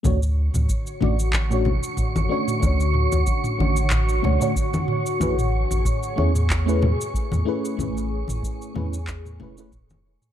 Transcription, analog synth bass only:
X:1
M:4/4
L:1/16
Q:"Swing 16ths" 1/4=93
K:Dlyd
V:1 name="Analog synth bass" clef=bass
D,,3 D,, z2 A,,,4- A,,, z2 A,,, z2 | D,,3 D,, z2 A,,,4 D,, z4 z | A,,,3 A,,, z2 E,,4- E,, z2 E,, z2 | A,,,3 A,,, z2 E,,4 E,,,4- E,,, z |]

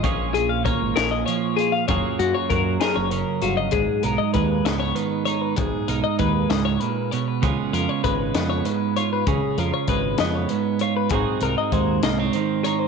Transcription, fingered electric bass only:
X:1
M:6/8
L:1/16
Q:3/8=65
K:G#dor
V:1 name="Fingered electric bass" clef=bass
A,,,4- A,,, G,,, A,,,2 z4 | F,,, z F,, z F,,2 z F,,,2 z =G,,,2 | G,,, z B,,, z D,,2 C,,2 z4 | G,,, z B,,, z D,,2 C,,2 z4 |
C,, z E,, z G,,,2 E,,2 z4 | C,, z E,, z G,,,2 E,,2 z4 | G,,, z ^B,,, z D,,2 B,,,2 z4 |]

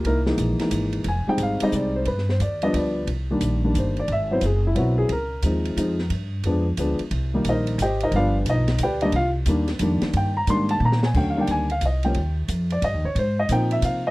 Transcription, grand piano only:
X:1
M:3/4
L:1/16
Q:"Swing" 1/4=178
K:Cm
V:1 name="Grand piano"
[B,^D=EB]2 z8 z2 | a2 g2 f2 e2 d2 c2 | =B2 c2 d2 e2 d3 z | z8 c2 d2 |
=e2 c2 A2 =E2 _G2 A2 | B12 | z12 | z4 [EBce]4 [Gceg]2 [EBce]2 |
[F=Bdf]2 z2 [Ee]4 [GBdg]2 [Ee]2 | [Ff]2 z8 z2 | g2 b2 c'2 =a2 b2 _a2 | (3g2 f2 g2 a2 f2 e2 g2- |
g2 z4 d2 e2 _d2 | c2 e2 g2 =e2 f2 _e2 |]
V:2 name="Grand piano"
z2 [=E,^G,B,^D]4 [E,G,B,D]6 | z2 [G,A,CE]4 [G,A,CE]6 | z6 [F,G,=B,D]6 | z2 [E,G,B,D]4 [E,G,B,D]6 |
z2 [_G,=B,C=E]2 z4 [G,B,CE]4 | z4 [F,A,CE]4 [F,A,CE]2 z2 | z4 [F,A,=B,D]2 z2 [F,A,B,D]2 z2 | z2 [E,G,B,E]6 z4 |
[F,G,=B,D]6 z4 [E,G,_B,D]2 | z4 [E,G,B,D]2 z2 [E,G,B,D]4- | [E,G,B,D]2 z2 [E,G,B,D]6 z2 | [D,^F,=A,_D]2 [E,G,B,=D]4 z4 [=F,G,B,_D]2 |
z12 | z4 [F,B,CE]6 z2 |]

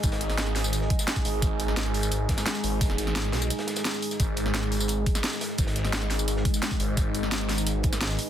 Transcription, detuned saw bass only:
X:1
M:4/4
L:1/8
Q:1/4=173
K:G#m
V:1 name="Detuned saw bass" clef=bass
G,,,4- G,,, z2 G,,, | G,,,4- G,,, G,,, z G,,,- | G,,, G,,,2 B,,, z4 | G,,,4- G,,, z3 |
G,,,4- G,,, z2 G,,, | G,,,4- G,,, G,,,2 z |]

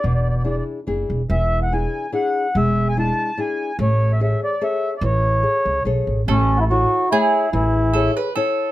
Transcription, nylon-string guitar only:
X:1
M:3/4
L:1/8
Q:1/4=145
K:A
V:1 name="Nylon-string guitar"
B,,2 [DEG]2 [DEG]2 | E,2 [DEG]2 [DEG]2 | G,2 [G,DE]2 [DEG]2 | A,2 [GAc]2 [GAc]2 |
E,2 [GAc]2 [GAc]2 | A,2 [EAc]2 [A,Gc]2 | E,2 [GAc]2 [EAc]2 |]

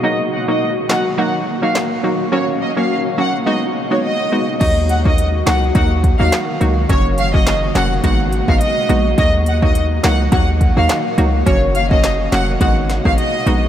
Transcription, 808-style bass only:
X:1
M:4/4
L:1/16
Q:"Swing 16ths" 1/4=105
K:Ebm
V:1 name="808-style bass" clef=bass
z16 | z16 | E,,6 D,,2 E,,3 E,, z2 D,,2 | G,,,6 F,,,2 A,,,3 A,,, z2 B,,,2 |
E,,6 D,,2 E,,3 E,, z2 D,,2 | G,,,6 F,,,2 A,,,3 A,,, z2 B,,,2 |]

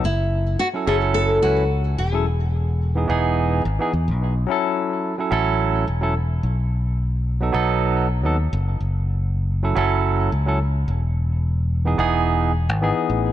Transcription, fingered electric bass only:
X:1
M:4/4
L:1/16
Q:"Swing 16ths" 1/4=108
K:Alyd
V:1 name="Fingered electric bass" clef=bass
F,,,4 z2 F,,,4 C,,4 E,,,2- | E,,,6 E,,,4 G,,, z E,, B,,,3 | z6 A,,,4 E,,,4 B,,,2- | B,,,6 B,,,4- B,,, D,,2 F,,,2 F,,,- |
F,,,6 F,,,4 C,,4 E,,,2- | E,,,6 E,,,4- E,,, G,,,2 z A,,,2 |]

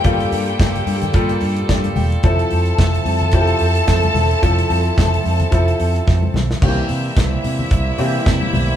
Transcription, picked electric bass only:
X:1
M:4/4
L:1/8
Q:"Swing 16ths" 1/4=110
K:F
V:1 name="Picked electric bass" clef=bass
G,,, G,, G,,, G,, G,,, G,, G,, E,,, | F,,, F,, F,,, F,, F,,, F,, F,, E,,, | F,,, F,, F,,, F,, F,,, F,, F,, =B,,, | C,, C, C,, C, C,, C, C, =B,,, |]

